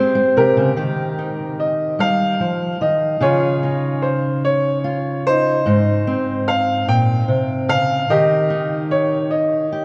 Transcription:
0, 0, Header, 1, 4, 480
1, 0, Start_track
1, 0, Tempo, 811908
1, 461, Time_signature, 6, 3, 24, 8
1, 5822, End_track
2, 0, Start_track
2, 0, Title_t, "Upright piano"
2, 0, Program_c, 0, 0
2, 0, Note_on_c, 0, 72, 76
2, 220, Note_on_c, 0, 70, 79
2, 230, Note_on_c, 0, 67, 55
2, 235, Note_off_c, 0, 72, 0
2, 922, Note_off_c, 0, 67, 0
2, 944, Note_on_c, 0, 75, 61
2, 962, Note_off_c, 0, 70, 0
2, 1184, Note_on_c, 0, 77, 75
2, 1189, Note_off_c, 0, 75, 0
2, 1665, Note_on_c, 0, 75, 67
2, 1677, Note_off_c, 0, 77, 0
2, 1886, Note_off_c, 0, 75, 0
2, 1905, Note_on_c, 0, 73, 75
2, 1914, Note_on_c, 0, 65, 53
2, 2378, Note_on_c, 0, 72, 64
2, 2397, Note_off_c, 0, 73, 0
2, 2602, Note_off_c, 0, 72, 0
2, 2603, Note_off_c, 0, 65, 0
2, 2628, Note_on_c, 0, 73, 71
2, 3081, Note_off_c, 0, 73, 0
2, 3114, Note_on_c, 0, 72, 94
2, 3127, Note_on_c, 0, 63, 58
2, 3810, Note_off_c, 0, 63, 0
2, 3830, Note_on_c, 0, 77, 76
2, 3848, Note_off_c, 0, 72, 0
2, 4049, Note_off_c, 0, 77, 0
2, 4070, Note_on_c, 0, 79, 87
2, 4549, Note_on_c, 0, 77, 78
2, 4560, Note_off_c, 0, 79, 0
2, 4790, Note_on_c, 0, 75, 75
2, 4791, Note_off_c, 0, 77, 0
2, 4797, Note_on_c, 0, 67, 62
2, 5242, Note_off_c, 0, 75, 0
2, 5269, Note_on_c, 0, 73, 70
2, 5485, Note_off_c, 0, 67, 0
2, 5502, Note_on_c, 0, 75, 63
2, 5512, Note_off_c, 0, 73, 0
2, 5822, Note_off_c, 0, 75, 0
2, 5822, End_track
3, 0, Start_track
3, 0, Title_t, "Steel-string acoustic guitar"
3, 0, Program_c, 1, 25
3, 0, Note_on_c, 1, 44, 74
3, 0, Note_on_c, 1, 60, 59
3, 0, Note_on_c, 1, 67, 58
3, 0, Note_on_c, 1, 72, 61
3, 90, Note_on_c, 1, 56, 62
3, 170, Note_off_c, 1, 44, 0
3, 217, Note_on_c, 1, 48, 63
3, 336, Note_on_c, 1, 49, 64
3, 339, Note_off_c, 1, 48, 0
3, 431, Note_off_c, 1, 60, 0
3, 431, Note_off_c, 1, 67, 0
3, 431, Note_off_c, 1, 72, 0
3, 450, Note_off_c, 1, 49, 0
3, 452, Note_on_c, 1, 51, 58
3, 455, Note_off_c, 1, 56, 0
3, 456, Note_on_c, 1, 67, 51
3, 701, Note_on_c, 1, 63, 44
3, 1176, Note_on_c, 1, 55, 52
3, 1416, Note_off_c, 1, 51, 0
3, 1418, Note_off_c, 1, 55, 0
3, 1420, Note_on_c, 1, 53, 54
3, 1658, Note_off_c, 1, 53, 0
3, 1661, Note_on_c, 1, 51, 54
3, 1869, Note_off_c, 1, 67, 0
3, 1892, Note_off_c, 1, 51, 0
3, 1895, Note_on_c, 1, 49, 63
3, 1899, Note_on_c, 1, 68, 58
3, 1912, Note_off_c, 1, 63, 0
3, 2146, Note_on_c, 1, 63, 50
3, 2863, Note_on_c, 1, 65, 51
3, 3313, Note_off_c, 1, 65, 0
3, 3337, Note_off_c, 1, 49, 0
3, 3345, Note_on_c, 1, 44, 68
3, 3350, Note_off_c, 1, 63, 0
3, 3350, Note_on_c, 1, 63, 55
3, 3590, Note_on_c, 1, 60, 47
3, 4063, Note_off_c, 1, 44, 0
3, 4068, Note_on_c, 1, 46, 60
3, 4302, Note_off_c, 1, 46, 0
3, 4304, Note_on_c, 1, 48, 55
3, 4542, Note_off_c, 1, 48, 0
3, 4544, Note_on_c, 1, 49, 56
3, 4756, Note_off_c, 1, 60, 0
3, 4780, Note_off_c, 1, 68, 0
3, 4782, Note_off_c, 1, 49, 0
3, 4786, Note_on_c, 1, 51, 66
3, 4790, Note_on_c, 1, 70, 57
3, 5019, Note_off_c, 1, 63, 0
3, 5026, Note_on_c, 1, 63, 50
3, 5749, Note_on_c, 1, 67, 49
3, 5822, Note_off_c, 1, 51, 0
3, 5822, Note_off_c, 1, 63, 0
3, 5822, Note_off_c, 1, 67, 0
3, 5822, Note_off_c, 1, 70, 0
3, 5822, End_track
4, 0, Start_track
4, 0, Title_t, "Viola"
4, 0, Program_c, 2, 41
4, 0, Note_on_c, 2, 56, 91
4, 217, Note_off_c, 2, 56, 0
4, 5822, End_track
0, 0, End_of_file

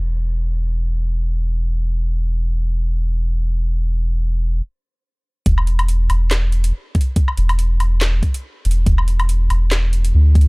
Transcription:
0, 0, Header, 1, 3, 480
1, 0, Start_track
1, 0, Tempo, 425532
1, 399, Time_signature, 4, 2, 24, 8
1, 11823, End_track
2, 0, Start_track
2, 0, Title_t, "Sub bass"
2, 0, Program_c, 0, 38
2, 0, Note_on_c, 0, 28, 86
2, 5200, Note_off_c, 0, 28, 0
2, 6159, Note_on_c, 0, 28, 99
2, 6862, Note_off_c, 0, 28, 0
2, 6879, Note_on_c, 0, 28, 91
2, 7582, Note_off_c, 0, 28, 0
2, 8319, Note_on_c, 0, 28, 102
2, 9262, Note_off_c, 0, 28, 0
2, 9759, Note_on_c, 0, 28, 95
2, 9982, Note_off_c, 0, 28, 0
2, 9998, Note_on_c, 0, 28, 100
2, 10702, Note_off_c, 0, 28, 0
2, 10719, Note_on_c, 0, 28, 92
2, 11422, Note_off_c, 0, 28, 0
2, 11438, Note_on_c, 0, 38, 96
2, 11823, Note_off_c, 0, 38, 0
2, 11823, End_track
3, 0, Start_track
3, 0, Title_t, "Drums"
3, 6159, Note_on_c, 9, 36, 122
3, 6159, Note_on_c, 9, 42, 83
3, 6272, Note_off_c, 9, 36, 0
3, 6272, Note_off_c, 9, 42, 0
3, 6291, Note_on_c, 9, 77, 80
3, 6398, Note_on_c, 9, 42, 57
3, 6404, Note_off_c, 9, 77, 0
3, 6511, Note_off_c, 9, 42, 0
3, 6532, Note_on_c, 9, 42, 40
3, 6532, Note_on_c, 9, 77, 83
3, 6638, Note_off_c, 9, 42, 0
3, 6638, Note_on_c, 9, 42, 80
3, 6644, Note_off_c, 9, 77, 0
3, 6751, Note_off_c, 9, 42, 0
3, 6878, Note_on_c, 9, 42, 58
3, 6878, Note_on_c, 9, 77, 56
3, 6991, Note_off_c, 9, 42, 0
3, 6991, Note_off_c, 9, 77, 0
3, 7119, Note_on_c, 9, 38, 126
3, 7119, Note_on_c, 9, 39, 94
3, 7119, Note_on_c, 9, 42, 87
3, 7232, Note_off_c, 9, 38, 0
3, 7232, Note_off_c, 9, 39, 0
3, 7232, Note_off_c, 9, 42, 0
3, 7359, Note_on_c, 9, 42, 55
3, 7472, Note_off_c, 9, 42, 0
3, 7490, Note_on_c, 9, 42, 83
3, 7603, Note_off_c, 9, 42, 0
3, 7838, Note_on_c, 9, 42, 54
3, 7839, Note_on_c, 9, 36, 105
3, 7905, Note_off_c, 9, 42, 0
3, 7905, Note_on_c, 9, 42, 68
3, 7952, Note_off_c, 9, 36, 0
3, 8018, Note_off_c, 9, 42, 0
3, 8078, Note_on_c, 9, 42, 79
3, 8079, Note_on_c, 9, 36, 127
3, 8191, Note_off_c, 9, 42, 0
3, 8192, Note_off_c, 9, 36, 0
3, 8212, Note_on_c, 9, 77, 77
3, 8319, Note_on_c, 9, 42, 54
3, 8325, Note_off_c, 9, 77, 0
3, 8431, Note_off_c, 9, 42, 0
3, 8452, Note_on_c, 9, 42, 39
3, 8452, Note_on_c, 9, 77, 84
3, 8559, Note_off_c, 9, 42, 0
3, 8559, Note_on_c, 9, 42, 78
3, 8565, Note_off_c, 9, 77, 0
3, 8672, Note_off_c, 9, 42, 0
3, 8801, Note_on_c, 9, 42, 54
3, 8801, Note_on_c, 9, 77, 51
3, 8913, Note_off_c, 9, 42, 0
3, 8913, Note_off_c, 9, 77, 0
3, 9040, Note_on_c, 9, 38, 127
3, 9040, Note_on_c, 9, 39, 99
3, 9040, Note_on_c, 9, 42, 81
3, 9152, Note_off_c, 9, 38, 0
3, 9152, Note_off_c, 9, 39, 0
3, 9152, Note_off_c, 9, 42, 0
3, 9279, Note_on_c, 9, 36, 67
3, 9281, Note_on_c, 9, 42, 53
3, 9392, Note_off_c, 9, 36, 0
3, 9394, Note_off_c, 9, 42, 0
3, 9412, Note_on_c, 9, 42, 79
3, 9524, Note_off_c, 9, 42, 0
3, 9758, Note_on_c, 9, 42, 52
3, 9825, Note_off_c, 9, 42, 0
3, 9825, Note_on_c, 9, 42, 67
3, 9938, Note_off_c, 9, 42, 0
3, 9999, Note_on_c, 9, 36, 127
3, 10000, Note_on_c, 9, 42, 81
3, 10112, Note_off_c, 9, 36, 0
3, 10112, Note_off_c, 9, 42, 0
3, 10132, Note_on_c, 9, 77, 77
3, 10240, Note_on_c, 9, 42, 52
3, 10245, Note_off_c, 9, 77, 0
3, 10352, Note_off_c, 9, 42, 0
3, 10373, Note_on_c, 9, 42, 38
3, 10373, Note_on_c, 9, 77, 79
3, 10479, Note_off_c, 9, 42, 0
3, 10479, Note_on_c, 9, 42, 78
3, 10486, Note_off_c, 9, 77, 0
3, 10592, Note_off_c, 9, 42, 0
3, 10719, Note_on_c, 9, 42, 54
3, 10719, Note_on_c, 9, 77, 51
3, 10832, Note_off_c, 9, 42, 0
3, 10832, Note_off_c, 9, 77, 0
3, 10958, Note_on_c, 9, 38, 127
3, 10958, Note_on_c, 9, 39, 95
3, 10958, Note_on_c, 9, 42, 82
3, 11071, Note_off_c, 9, 38, 0
3, 11071, Note_off_c, 9, 39, 0
3, 11071, Note_off_c, 9, 42, 0
3, 11200, Note_on_c, 9, 42, 53
3, 11313, Note_off_c, 9, 42, 0
3, 11332, Note_on_c, 9, 42, 76
3, 11444, Note_off_c, 9, 42, 0
3, 11679, Note_on_c, 9, 36, 113
3, 11680, Note_on_c, 9, 42, 49
3, 11745, Note_off_c, 9, 42, 0
3, 11745, Note_on_c, 9, 42, 64
3, 11791, Note_off_c, 9, 36, 0
3, 11823, Note_off_c, 9, 42, 0
3, 11823, End_track
0, 0, End_of_file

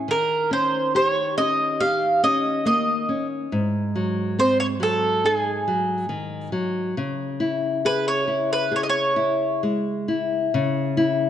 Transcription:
0, 0, Header, 1, 3, 480
1, 0, Start_track
1, 0, Key_signature, 4, "minor"
1, 0, Tempo, 859599
1, 47, Time_signature, 4, 2, 24, 8
1, 3887, Tempo, 891530
1, 6221, End_track
2, 0, Start_track
2, 0, Title_t, "Mandolin"
2, 0, Program_c, 0, 25
2, 60, Note_on_c, 0, 70, 78
2, 281, Note_off_c, 0, 70, 0
2, 295, Note_on_c, 0, 72, 74
2, 515, Note_off_c, 0, 72, 0
2, 535, Note_on_c, 0, 73, 73
2, 767, Note_off_c, 0, 73, 0
2, 769, Note_on_c, 0, 75, 79
2, 1008, Note_on_c, 0, 77, 76
2, 1016, Note_off_c, 0, 75, 0
2, 1232, Note_off_c, 0, 77, 0
2, 1250, Note_on_c, 0, 75, 86
2, 1482, Note_off_c, 0, 75, 0
2, 1488, Note_on_c, 0, 75, 76
2, 1824, Note_off_c, 0, 75, 0
2, 2454, Note_on_c, 0, 72, 83
2, 2561, Note_off_c, 0, 72, 0
2, 2568, Note_on_c, 0, 73, 79
2, 2600, Note_off_c, 0, 73, 0
2, 2696, Note_on_c, 0, 69, 75
2, 2935, Note_on_c, 0, 68, 68
2, 2938, Note_off_c, 0, 69, 0
2, 3629, Note_off_c, 0, 68, 0
2, 4370, Note_on_c, 0, 71, 79
2, 4485, Note_off_c, 0, 71, 0
2, 4488, Note_on_c, 0, 73, 75
2, 4728, Note_off_c, 0, 73, 0
2, 4730, Note_on_c, 0, 71, 78
2, 4846, Note_off_c, 0, 71, 0
2, 4855, Note_on_c, 0, 73, 66
2, 4881, Note_off_c, 0, 73, 0
2, 4895, Note_on_c, 0, 75, 57
2, 4922, Note_off_c, 0, 75, 0
2, 4928, Note_on_c, 0, 73, 74
2, 5308, Note_off_c, 0, 73, 0
2, 6221, End_track
3, 0, Start_track
3, 0, Title_t, "Nylon-string guitar"
3, 0, Program_c, 1, 24
3, 45, Note_on_c, 1, 51, 55
3, 284, Note_on_c, 1, 61, 47
3, 519, Note_off_c, 1, 61, 0
3, 530, Note_on_c, 1, 67, 42
3, 760, Note_off_c, 1, 67, 0
3, 768, Note_on_c, 1, 61, 40
3, 1001, Note_off_c, 1, 61, 0
3, 1007, Note_on_c, 1, 67, 51
3, 1241, Note_off_c, 1, 67, 0
3, 1247, Note_on_c, 1, 61, 47
3, 1479, Note_off_c, 1, 61, 0
3, 1482, Note_on_c, 1, 58, 47
3, 1716, Note_off_c, 1, 58, 0
3, 1725, Note_on_c, 1, 61, 45
3, 1942, Note_off_c, 1, 51, 0
3, 1958, Note_off_c, 1, 61, 0
3, 1967, Note_on_c, 1, 44, 53
3, 2209, Note_on_c, 1, 54, 45
3, 2439, Note_off_c, 1, 54, 0
3, 2449, Note_on_c, 1, 60, 45
3, 2680, Note_off_c, 1, 60, 0
3, 2680, Note_on_c, 1, 54, 39
3, 2916, Note_off_c, 1, 54, 0
3, 2928, Note_on_c, 1, 63, 47
3, 3160, Note_off_c, 1, 63, 0
3, 3170, Note_on_c, 1, 54, 47
3, 3398, Note_off_c, 1, 54, 0
3, 3400, Note_on_c, 1, 51, 50
3, 3636, Note_off_c, 1, 51, 0
3, 3642, Note_on_c, 1, 54, 46
3, 3865, Note_off_c, 1, 44, 0
3, 3877, Note_off_c, 1, 54, 0
3, 3893, Note_on_c, 1, 49, 51
3, 4123, Note_on_c, 1, 64, 46
3, 4351, Note_off_c, 1, 64, 0
3, 4365, Note_on_c, 1, 68, 42
3, 4592, Note_off_c, 1, 68, 0
3, 4594, Note_on_c, 1, 64, 39
3, 4827, Note_off_c, 1, 64, 0
3, 4831, Note_on_c, 1, 68, 47
3, 5068, Note_off_c, 1, 68, 0
3, 5072, Note_on_c, 1, 64, 48
3, 5312, Note_off_c, 1, 64, 0
3, 5324, Note_on_c, 1, 56, 43
3, 5560, Note_off_c, 1, 56, 0
3, 5568, Note_on_c, 1, 64, 44
3, 5790, Note_off_c, 1, 49, 0
3, 5802, Note_off_c, 1, 64, 0
3, 5815, Note_on_c, 1, 49, 65
3, 6046, Note_on_c, 1, 64, 53
3, 6221, Note_off_c, 1, 49, 0
3, 6221, Note_off_c, 1, 64, 0
3, 6221, End_track
0, 0, End_of_file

